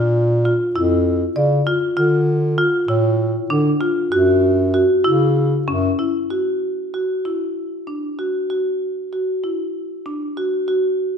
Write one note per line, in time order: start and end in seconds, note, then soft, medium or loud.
0.00 0.60 A#2 medium
0.00 0.20 F4 medium
0.45 0.63 F4 medium
0.75 1.26 F2 medium
0.75 1.11 E4 medium
1.36 1.62 C#3 medium
1.36 1.54 D5 medium
1.67 1.85 F4 medium
1.97 2.73 D3 medium
1.97 2.33 F4 medium
2.58 2.76 F4 medium
2.88 3.39 A2 medium
2.88 3.24 E4 medium
3.50 3.76 D3 medium
3.50 3.68 D4 medium
3.81 3.99 F4 medium
4.12 4.88 F#2 medium
4.12 4.48 F#4 medium
4.74 4.92 F#4 medium
5.04 5.57 C#3 medium
5.04 5.41 E4 medium
5.68 5.94 F#2 medium
5.68 5.86 C#4 medium
5.99 6.17 E4 medium
6.30 6.67 F#4 medium
6.94 7.12 F#4 soft
7.25 7.62 E4 medium
7.87 8.06 D4 soft
8.19 8.37 F#4 soft
8.50 8.86 F#4 soft
9.13 9.31 F#4 medium
9.44 9.80 E4 soft
10.06 10.24 D4 medium
10.37 10.55 F#4 medium
10.68 11.04 F#4 medium